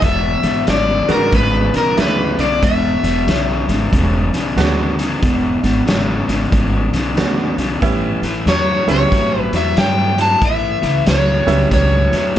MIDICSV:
0, 0, Header, 1, 6, 480
1, 0, Start_track
1, 0, Tempo, 649351
1, 18, Time_signature, 4, 2, 24, 8
1, 9158, End_track
2, 0, Start_track
2, 0, Title_t, "Overdriven electric guitar"
2, 0, Program_c, 0, 29
2, 32, Note_on_c, 0, 76, 102
2, 511, Note_off_c, 0, 76, 0
2, 514, Note_on_c, 0, 74, 88
2, 820, Note_off_c, 0, 74, 0
2, 823, Note_on_c, 0, 70, 84
2, 995, Note_off_c, 0, 70, 0
2, 999, Note_on_c, 0, 71, 86
2, 1303, Note_off_c, 0, 71, 0
2, 1306, Note_on_c, 0, 70, 79
2, 1474, Note_off_c, 0, 70, 0
2, 1477, Note_on_c, 0, 71, 78
2, 1775, Note_on_c, 0, 74, 80
2, 1783, Note_off_c, 0, 71, 0
2, 1935, Note_off_c, 0, 74, 0
2, 1952, Note_on_c, 0, 76, 83
2, 2879, Note_off_c, 0, 76, 0
2, 6274, Note_on_c, 0, 73, 77
2, 6573, Note_off_c, 0, 73, 0
2, 6582, Note_on_c, 0, 73, 84
2, 6951, Note_off_c, 0, 73, 0
2, 6951, Note_on_c, 0, 71, 84
2, 7067, Note_off_c, 0, 71, 0
2, 7069, Note_on_c, 0, 76, 83
2, 7222, Note_off_c, 0, 76, 0
2, 7236, Note_on_c, 0, 79, 90
2, 7541, Note_off_c, 0, 79, 0
2, 7549, Note_on_c, 0, 81, 90
2, 7718, Note_off_c, 0, 81, 0
2, 7720, Note_on_c, 0, 76, 96
2, 8189, Note_off_c, 0, 76, 0
2, 8192, Note_on_c, 0, 73, 92
2, 8636, Note_off_c, 0, 73, 0
2, 8674, Note_on_c, 0, 73, 89
2, 9158, Note_off_c, 0, 73, 0
2, 9158, End_track
3, 0, Start_track
3, 0, Title_t, "Upright piano"
3, 0, Program_c, 1, 0
3, 799, Note_on_c, 1, 56, 64
3, 800, Note_on_c, 1, 62, 56
3, 802, Note_on_c, 1, 59, 56
3, 802, Note_on_c, 1, 66, 68
3, 961, Note_off_c, 1, 56, 0
3, 961, Note_off_c, 1, 62, 0
3, 962, Note_off_c, 1, 59, 0
3, 962, Note_off_c, 1, 66, 0
3, 1456, Note_on_c, 1, 56, 62
3, 1457, Note_on_c, 1, 59, 50
3, 1458, Note_on_c, 1, 62, 53
3, 1460, Note_on_c, 1, 64, 59
3, 2183, Note_off_c, 1, 56, 0
3, 2183, Note_off_c, 1, 59, 0
3, 2184, Note_off_c, 1, 62, 0
3, 2185, Note_off_c, 1, 64, 0
3, 3378, Note_on_c, 1, 56, 64
3, 3379, Note_on_c, 1, 59, 57
3, 3380, Note_on_c, 1, 62, 55
3, 3381, Note_on_c, 1, 66, 70
3, 3654, Note_off_c, 1, 56, 0
3, 3654, Note_off_c, 1, 59, 0
3, 3655, Note_off_c, 1, 62, 0
3, 3656, Note_off_c, 1, 66, 0
3, 5302, Note_on_c, 1, 56, 59
3, 5302, Note_on_c, 1, 59, 62
3, 5304, Note_on_c, 1, 62, 58
3, 5306, Note_on_c, 1, 66, 66
3, 5576, Note_off_c, 1, 56, 0
3, 5576, Note_off_c, 1, 59, 0
3, 5577, Note_off_c, 1, 62, 0
3, 5577, Note_off_c, 1, 66, 0
3, 5780, Note_on_c, 1, 55, 72
3, 5781, Note_on_c, 1, 59, 62
3, 5783, Note_on_c, 1, 61, 61
3, 5784, Note_on_c, 1, 64, 83
3, 6054, Note_off_c, 1, 55, 0
3, 6055, Note_off_c, 1, 59, 0
3, 6056, Note_off_c, 1, 61, 0
3, 6056, Note_off_c, 1, 64, 0
3, 6561, Note_on_c, 1, 55, 64
3, 6561, Note_on_c, 1, 59, 61
3, 6562, Note_on_c, 1, 61, 65
3, 6563, Note_on_c, 1, 64, 68
3, 7184, Note_off_c, 1, 55, 0
3, 7184, Note_off_c, 1, 59, 0
3, 7185, Note_off_c, 1, 61, 0
3, 7185, Note_off_c, 1, 64, 0
3, 8476, Note_on_c, 1, 55, 70
3, 8478, Note_on_c, 1, 61, 64
3, 8480, Note_on_c, 1, 59, 65
3, 8482, Note_on_c, 1, 64, 78
3, 9100, Note_off_c, 1, 55, 0
3, 9101, Note_off_c, 1, 61, 0
3, 9102, Note_off_c, 1, 59, 0
3, 9103, Note_off_c, 1, 64, 0
3, 9158, End_track
4, 0, Start_track
4, 0, Title_t, "Overdriven electric guitar"
4, 0, Program_c, 2, 29
4, 11, Note_on_c, 2, 40, 74
4, 13, Note_on_c, 2, 47, 89
4, 289, Note_off_c, 2, 40, 0
4, 290, Note_off_c, 2, 47, 0
4, 316, Note_on_c, 2, 40, 72
4, 321, Note_on_c, 2, 47, 71
4, 479, Note_off_c, 2, 40, 0
4, 481, Note_off_c, 2, 47, 0
4, 493, Note_on_c, 2, 40, 75
4, 497, Note_on_c, 2, 49, 85
4, 770, Note_off_c, 2, 40, 0
4, 773, Note_off_c, 2, 49, 0
4, 799, Note_on_c, 2, 40, 65
4, 802, Note_on_c, 2, 49, 72
4, 961, Note_off_c, 2, 40, 0
4, 962, Note_off_c, 2, 49, 0
4, 975, Note_on_c, 2, 40, 75
4, 978, Note_on_c, 2, 49, 83
4, 1252, Note_off_c, 2, 40, 0
4, 1253, Note_off_c, 2, 49, 0
4, 1281, Note_on_c, 2, 40, 66
4, 1284, Note_on_c, 2, 49, 73
4, 1442, Note_off_c, 2, 40, 0
4, 1444, Note_off_c, 2, 49, 0
4, 1463, Note_on_c, 2, 40, 82
4, 1465, Note_on_c, 2, 49, 83
4, 1736, Note_off_c, 2, 40, 0
4, 1737, Note_off_c, 2, 49, 0
4, 1764, Note_on_c, 2, 40, 70
4, 1768, Note_on_c, 2, 49, 79
4, 1924, Note_off_c, 2, 40, 0
4, 1926, Note_off_c, 2, 49, 0
4, 1938, Note_on_c, 2, 40, 73
4, 1943, Note_on_c, 2, 47, 86
4, 2214, Note_off_c, 2, 40, 0
4, 2216, Note_off_c, 2, 47, 0
4, 2244, Note_on_c, 2, 40, 72
4, 2246, Note_on_c, 2, 47, 82
4, 2404, Note_off_c, 2, 40, 0
4, 2405, Note_off_c, 2, 47, 0
4, 2424, Note_on_c, 2, 40, 88
4, 2428, Note_on_c, 2, 49, 90
4, 2697, Note_off_c, 2, 40, 0
4, 2699, Note_off_c, 2, 49, 0
4, 2724, Note_on_c, 2, 40, 68
4, 2729, Note_on_c, 2, 49, 69
4, 2884, Note_off_c, 2, 40, 0
4, 2887, Note_off_c, 2, 49, 0
4, 2900, Note_on_c, 2, 40, 84
4, 2905, Note_on_c, 2, 49, 90
4, 3175, Note_off_c, 2, 40, 0
4, 3178, Note_off_c, 2, 49, 0
4, 3205, Note_on_c, 2, 40, 77
4, 3210, Note_on_c, 2, 49, 86
4, 3365, Note_off_c, 2, 40, 0
4, 3368, Note_off_c, 2, 49, 0
4, 3383, Note_on_c, 2, 40, 74
4, 3386, Note_on_c, 2, 49, 80
4, 3656, Note_off_c, 2, 40, 0
4, 3658, Note_off_c, 2, 49, 0
4, 3686, Note_on_c, 2, 40, 63
4, 3690, Note_on_c, 2, 49, 74
4, 3845, Note_off_c, 2, 40, 0
4, 3848, Note_off_c, 2, 49, 0
4, 3862, Note_on_c, 2, 40, 76
4, 3865, Note_on_c, 2, 47, 92
4, 4136, Note_off_c, 2, 40, 0
4, 4137, Note_off_c, 2, 47, 0
4, 4164, Note_on_c, 2, 40, 64
4, 4167, Note_on_c, 2, 47, 76
4, 4324, Note_off_c, 2, 40, 0
4, 4326, Note_off_c, 2, 47, 0
4, 4335, Note_on_c, 2, 40, 83
4, 4337, Note_on_c, 2, 49, 86
4, 4612, Note_off_c, 2, 40, 0
4, 4614, Note_off_c, 2, 49, 0
4, 4639, Note_on_c, 2, 40, 64
4, 4643, Note_on_c, 2, 49, 69
4, 4802, Note_off_c, 2, 40, 0
4, 4804, Note_off_c, 2, 49, 0
4, 4818, Note_on_c, 2, 40, 76
4, 4821, Note_on_c, 2, 49, 74
4, 5094, Note_off_c, 2, 40, 0
4, 5095, Note_off_c, 2, 49, 0
4, 5123, Note_on_c, 2, 40, 68
4, 5127, Note_on_c, 2, 49, 84
4, 5284, Note_off_c, 2, 40, 0
4, 5286, Note_off_c, 2, 49, 0
4, 5298, Note_on_c, 2, 40, 81
4, 5300, Note_on_c, 2, 49, 90
4, 5573, Note_off_c, 2, 40, 0
4, 5574, Note_off_c, 2, 49, 0
4, 5605, Note_on_c, 2, 40, 66
4, 5609, Note_on_c, 2, 49, 73
4, 5764, Note_off_c, 2, 40, 0
4, 5767, Note_off_c, 2, 49, 0
4, 5781, Note_on_c, 2, 45, 80
4, 5783, Note_on_c, 2, 52, 85
4, 6055, Note_off_c, 2, 45, 0
4, 6056, Note_off_c, 2, 52, 0
4, 6085, Note_on_c, 2, 45, 74
4, 6089, Note_on_c, 2, 52, 73
4, 6244, Note_off_c, 2, 45, 0
4, 6246, Note_off_c, 2, 52, 0
4, 6262, Note_on_c, 2, 45, 82
4, 6265, Note_on_c, 2, 54, 101
4, 6535, Note_off_c, 2, 45, 0
4, 6537, Note_off_c, 2, 54, 0
4, 6565, Note_on_c, 2, 45, 63
4, 6569, Note_on_c, 2, 54, 72
4, 6724, Note_off_c, 2, 45, 0
4, 6726, Note_off_c, 2, 54, 0
4, 6738, Note_on_c, 2, 45, 74
4, 6743, Note_on_c, 2, 54, 87
4, 7013, Note_off_c, 2, 45, 0
4, 7015, Note_off_c, 2, 54, 0
4, 7043, Note_on_c, 2, 45, 67
4, 7046, Note_on_c, 2, 54, 78
4, 7203, Note_off_c, 2, 45, 0
4, 7204, Note_off_c, 2, 54, 0
4, 7217, Note_on_c, 2, 45, 75
4, 7220, Note_on_c, 2, 54, 84
4, 7492, Note_off_c, 2, 45, 0
4, 7494, Note_off_c, 2, 54, 0
4, 7522, Note_on_c, 2, 45, 71
4, 7526, Note_on_c, 2, 54, 85
4, 7682, Note_off_c, 2, 45, 0
4, 7684, Note_off_c, 2, 54, 0
4, 7700, Note_on_c, 2, 45, 77
4, 7704, Note_on_c, 2, 52, 80
4, 7973, Note_off_c, 2, 45, 0
4, 7975, Note_off_c, 2, 52, 0
4, 7998, Note_on_c, 2, 45, 70
4, 8002, Note_on_c, 2, 52, 73
4, 8160, Note_off_c, 2, 45, 0
4, 8162, Note_off_c, 2, 52, 0
4, 8176, Note_on_c, 2, 45, 70
4, 8181, Note_on_c, 2, 54, 78
4, 8451, Note_off_c, 2, 45, 0
4, 8454, Note_off_c, 2, 54, 0
4, 8482, Note_on_c, 2, 45, 65
4, 8486, Note_on_c, 2, 54, 73
4, 8641, Note_off_c, 2, 45, 0
4, 8644, Note_off_c, 2, 54, 0
4, 8655, Note_on_c, 2, 45, 83
4, 8657, Note_on_c, 2, 54, 85
4, 8931, Note_off_c, 2, 45, 0
4, 8932, Note_off_c, 2, 54, 0
4, 8960, Note_on_c, 2, 45, 71
4, 8965, Note_on_c, 2, 54, 68
4, 9120, Note_off_c, 2, 45, 0
4, 9123, Note_off_c, 2, 54, 0
4, 9158, End_track
5, 0, Start_track
5, 0, Title_t, "Upright bass"
5, 0, Program_c, 3, 32
5, 14, Note_on_c, 3, 28, 87
5, 278, Note_off_c, 3, 28, 0
5, 323, Note_on_c, 3, 32, 85
5, 475, Note_off_c, 3, 32, 0
5, 501, Note_on_c, 3, 32, 74
5, 763, Note_off_c, 3, 32, 0
5, 802, Note_on_c, 3, 32, 83
5, 955, Note_off_c, 3, 32, 0
5, 978, Note_on_c, 3, 32, 95
5, 1242, Note_off_c, 3, 32, 0
5, 1460, Note_on_c, 3, 38, 76
5, 1723, Note_off_c, 3, 38, 0
5, 1760, Note_on_c, 3, 35, 74
5, 1915, Note_off_c, 3, 35, 0
5, 1940, Note_on_c, 3, 28, 80
5, 2203, Note_off_c, 3, 28, 0
5, 2242, Note_on_c, 3, 28, 79
5, 2396, Note_off_c, 3, 28, 0
5, 2419, Note_on_c, 3, 35, 78
5, 2682, Note_off_c, 3, 35, 0
5, 2723, Note_on_c, 3, 32, 86
5, 2877, Note_off_c, 3, 32, 0
5, 2902, Note_on_c, 3, 28, 97
5, 3165, Note_off_c, 3, 28, 0
5, 3199, Note_on_c, 3, 35, 81
5, 3355, Note_off_c, 3, 35, 0
5, 3374, Note_on_c, 3, 38, 84
5, 3792, Note_off_c, 3, 38, 0
5, 3861, Note_on_c, 3, 28, 88
5, 4124, Note_off_c, 3, 28, 0
5, 4164, Note_on_c, 3, 32, 80
5, 4317, Note_off_c, 3, 32, 0
5, 4339, Note_on_c, 3, 32, 77
5, 4602, Note_off_c, 3, 32, 0
5, 4643, Note_on_c, 3, 32, 78
5, 4797, Note_off_c, 3, 32, 0
5, 4821, Note_on_c, 3, 32, 88
5, 5084, Note_off_c, 3, 32, 0
5, 5124, Note_on_c, 3, 35, 76
5, 5277, Note_off_c, 3, 35, 0
5, 5299, Note_on_c, 3, 38, 78
5, 5563, Note_off_c, 3, 38, 0
5, 5601, Note_on_c, 3, 35, 69
5, 5756, Note_off_c, 3, 35, 0
5, 5781, Note_on_c, 3, 33, 84
5, 6043, Note_off_c, 3, 33, 0
5, 6076, Note_on_c, 3, 33, 75
5, 6232, Note_off_c, 3, 33, 0
5, 6253, Note_on_c, 3, 40, 80
5, 6518, Note_off_c, 3, 40, 0
5, 6559, Note_on_c, 3, 37, 84
5, 6714, Note_off_c, 3, 37, 0
5, 6738, Note_on_c, 3, 33, 95
5, 7001, Note_off_c, 3, 33, 0
5, 7042, Note_on_c, 3, 40, 80
5, 7196, Note_off_c, 3, 40, 0
5, 7216, Note_on_c, 3, 43, 73
5, 7632, Note_off_c, 3, 43, 0
5, 7701, Note_on_c, 3, 33, 84
5, 7963, Note_off_c, 3, 33, 0
5, 8005, Note_on_c, 3, 37, 80
5, 8157, Note_off_c, 3, 37, 0
5, 8179, Note_on_c, 3, 37, 82
5, 8441, Note_off_c, 3, 37, 0
5, 8476, Note_on_c, 3, 37, 81
5, 8631, Note_off_c, 3, 37, 0
5, 8657, Note_on_c, 3, 37, 89
5, 8920, Note_off_c, 3, 37, 0
5, 8961, Note_on_c, 3, 40, 83
5, 9114, Note_off_c, 3, 40, 0
5, 9158, End_track
6, 0, Start_track
6, 0, Title_t, "Drums"
6, 15, Note_on_c, 9, 42, 84
6, 16, Note_on_c, 9, 36, 117
6, 22, Note_on_c, 9, 38, 31
6, 89, Note_off_c, 9, 42, 0
6, 90, Note_off_c, 9, 36, 0
6, 96, Note_off_c, 9, 38, 0
6, 319, Note_on_c, 9, 42, 58
6, 327, Note_on_c, 9, 38, 30
6, 393, Note_off_c, 9, 42, 0
6, 401, Note_off_c, 9, 38, 0
6, 495, Note_on_c, 9, 42, 79
6, 502, Note_on_c, 9, 38, 103
6, 569, Note_off_c, 9, 42, 0
6, 576, Note_off_c, 9, 38, 0
6, 802, Note_on_c, 9, 42, 54
6, 810, Note_on_c, 9, 38, 32
6, 876, Note_off_c, 9, 42, 0
6, 884, Note_off_c, 9, 38, 0
6, 979, Note_on_c, 9, 42, 72
6, 980, Note_on_c, 9, 36, 91
6, 1053, Note_off_c, 9, 42, 0
6, 1054, Note_off_c, 9, 36, 0
6, 1286, Note_on_c, 9, 42, 57
6, 1293, Note_on_c, 9, 38, 33
6, 1359, Note_off_c, 9, 42, 0
6, 1367, Note_off_c, 9, 38, 0
6, 1460, Note_on_c, 9, 42, 72
6, 1467, Note_on_c, 9, 38, 98
6, 1534, Note_off_c, 9, 42, 0
6, 1541, Note_off_c, 9, 38, 0
6, 1764, Note_on_c, 9, 42, 61
6, 1772, Note_on_c, 9, 38, 35
6, 1838, Note_off_c, 9, 42, 0
6, 1846, Note_off_c, 9, 38, 0
6, 1941, Note_on_c, 9, 42, 84
6, 1942, Note_on_c, 9, 36, 110
6, 2015, Note_off_c, 9, 42, 0
6, 2016, Note_off_c, 9, 36, 0
6, 2248, Note_on_c, 9, 42, 59
6, 2255, Note_on_c, 9, 38, 32
6, 2322, Note_off_c, 9, 42, 0
6, 2329, Note_off_c, 9, 38, 0
6, 2424, Note_on_c, 9, 42, 86
6, 2431, Note_on_c, 9, 38, 106
6, 2498, Note_off_c, 9, 42, 0
6, 2505, Note_off_c, 9, 38, 0
6, 2728, Note_on_c, 9, 42, 57
6, 2735, Note_on_c, 9, 38, 33
6, 2802, Note_off_c, 9, 42, 0
6, 2809, Note_off_c, 9, 38, 0
6, 2903, Note_on_c, 9, 36, 95
6, 2903, Note_on_c, 9, 42, 78
6, 2977, Note_off_c, 9, 36, 0
6, 2977, Note_off_c, 9, 42, 0
6, 3208, Note_on_c, 9, 42, 62
6, 3215, Note_on_c, 9, 38, 32
6, 3281, Note_off_c, 9, 42, 0
6, 3289, Note_off_c, 9, 38, 0
6, 3383, Note_on_c, 9, 42, 74
6, 3391, Note_on_c, 9, 38, 96
6, 3457, Note_off_c, 9, 42, 0
6, 3465, Note_off_c, 9, 38, 0
6, 3687, Note_on_c, 9, 42, 64
6, 3695, Note_on_c, 9, 38, 35
6, 3761, Note_off_c, 9, 42, 0
6, 3769, Note_off_c, 9, 38, 0
6, 3864, Note_on_c, 9, 36, 105
6, 3866, Note_on_c, 9, 42, 86
6, 3873, Note_on_c, 9, 38, 31
6, 3937, Note_off_c, 9, 36, 0
6, 3939, Note_off_c, 9, 42, 0
6, 3947, Note_off_c, 9, 38, 0
6, 4167, Note_on_c, 9, 42, 58
6, 4175, Note_on_c, 9, 38, 34
6, 4241, Note_off_c, 9, 42, 0
6, 4249, Note_off_c, 9, 38, 0
6, 4344, Note_on_c, 9, 42, 75
6, 4351, Note_on_c, 9, 38, 108
6, 4418, Note_off_c, 9, 42, 0
6, 4425, Note_off_c, 9, 38, 0
6, 4650, Note_on_c, 9, 42, 56
6, 4658, Note_on_c, 9, 38, 31
6, 4724, Note_off_c, 9, 42, 0
6, 4731, Note_off_c, 9, 38, 0
6, 4822, Note_on_c, 9, 42, 71
6, 4823, Note_on_c, 9, 36, 104
6, 4896, Note_off_c, 9, 36, 0
6, 4896, Note_off_c, 9, 42, 0
6, 5127, Note_on_c, 9, 42, 61
6, 5134, Note_on_c, 9, 38, 34
6, 5201, Note_off_c, 9, 42, 0
6, 5208, Note_off_c, 9, 38, 0
6, 5301, Note_on_c, 9, 42, 69
6, 5309, Note_on_c, 9, 38, 106
6, 5375, Note_off_c, 9, 42, 0
6, 5382, Note_off_c, 9, 38, 0
6, 5606, Note_on_c, 9, 42, 60
6, 5613, Note_on_c, 9, 38, 32
6, 5680, Note_off_c, 9, 42, 0
6, 5687, Note_off_c, 9, 38, 0
6, 5782, Note_on_c, 9, 36, 107
6, 5783, Note_on_c, 9, 42, 77
6, 5856, Note_off_c, 9, 36, 0
6, 5857, Note_off_c, 9, 42, 0
6, 6085, Note_on_c, 9, 42, 56
6, 6092, Note_on_c, 9, 38, 30
6, 6159, Note_off_c, 9, 42, 0
6, 6166, Note_off_c, 9, 38, 0
6, 6262, Note_on_c, 9, 42, 75
6, 6270, Note_on_c, 9, 38, 103
6, 6336, Note_off_c, 9, 42, 0
6, 6344, Note_off_c, 9, 38, 0
6, 6567, Note_on_c, 9, 42, 60
6, 6574, Note_on_c, 9, 38, 31
6, 6641, Note_off_c, 9, 42, 0
6, 6648, Note_off_c, 9, 38, 0
6, 6741, Note_on_c, 9, 36, 100
6, 6741, Note_on_c, 9, 42, 75
6, 6748, Note_on_c, 9, 38, 29
6, 6815, Note_off_c, 9, 36, 0
6, 6815, Note_off_c, 9, 42, 0
6, 6822, Note_off_c, 9, 38, 0
6, 7044, Note_on_c, 9, 42, 61
6, 7051, Note_on_c, 9, 38, 33
6, 7118, Note_off_c, 9, 42, 0
6, 7125, Note_off_c, 9, 38, 0
6, 7221, Note_on_c, 9, 42, 81
6, 7229, Note_on_c, 9, 38, 97
6, 7295, Note_off_c, 9, 42, 0
6, 7302, Note_off_c, 9, 38, 0
6, 7526, Note_on_c, 9, 42, 68
6, 7534, Note_on_c, 9, 38, 35
6, 7600, Note_off_c, 9, 42, 0
6, 7608, Note_off_c, 9, 38, 0
6, 7700, Note_on_c, 9, 36, 116
6, 7700, Note_on_c, 9, 42, 90
6, 7774, Note_off_c, 9, 36, 0
6, 7774, Note_off_c, 9, 42, 0
6, 8006, Note_on_c, 9, 42, 59
6, 8013, Note_on_c, 9, 38, 30
6, 8080, Note_off_c, 9, 42, 0
6, 8087, Note_off_c, 9, 38, 0
6, 8179, Note_on_c, 9, 42, 83
6, 8186, Note_on_c, 9, 38, 105
6, 8253, Note_off_c, 9, 42, 0
6, 8260, Note_off_c, 9, 38, 0
6, 8484, Note_on_c, 9, 42, 55
6, 8491, Note_on_c, 9, 38, 31
6, 8558, Note_off_c, 9, 42, 0
6, 8565, Note_off_c, 9, 38, 0
6, 8660, Note_on_c, 9, 36, 99
6, 8660, Note_on_c, 9, 42, 80
6, 8667, Note_on_c, 9, 38, 28
6, 8733, Note_off_c, 9, 36, 0
6, 8734, Note_off_c, 9, 42, 0
6, 8741, Note_off_c, 9, 38, 0
6, 8965, Note_on_c, 9, 42, 58
6, 8973, Note_on_c, 9, 38, 34
6, 9039, Note_off_c, 9, 42, 0
6, 9046, Note_off_c, 9, 38, 0
6, 9158, End_track
0, 0, End_of_file